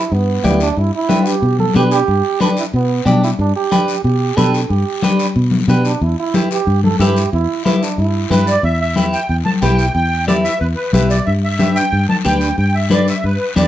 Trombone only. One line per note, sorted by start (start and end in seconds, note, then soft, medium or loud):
0.00 0.14 E4 medium
0.13 0.45 B3 medium
0.46 0.60 B3 medium
0.63 0.81 D4 medium
0.80 0.94 E4 medium
0.95 1.29 E4 loud
1.27 1.59 G4 medium
1.60 1.74 A4 medium
1.76 1.83 G4 loud
1.92 2.37 G4 loud
2.42 2.49 D4 medium
2.58 2.65 E4 medium
2.75 3.10 B3 medium
3.08 3.23 D4 medium
3.24 3.31 E4 medium
3.40 3.54 D4 medium
3.56 4.01 G4 medium
4.04 4.38 G4 medium
4.36 4.53 A4 medium
4.69 5.31 G4 medium
5.69 5.84 B3 medium
5.86 6.04 D4 medium
6.03 6.18 E4 medium
6.20 6.49 E4 loud
6.52 6.82 G4 loud
6.84 6.99 A4 medium
6.99 7.30 G4 medium
7.33 7.63 E4 medium
7.66 7.77 E4 medium
7.79 7.97 D4 medium
7.79 7.83 E4 medium
7.98 8.44 E4 medium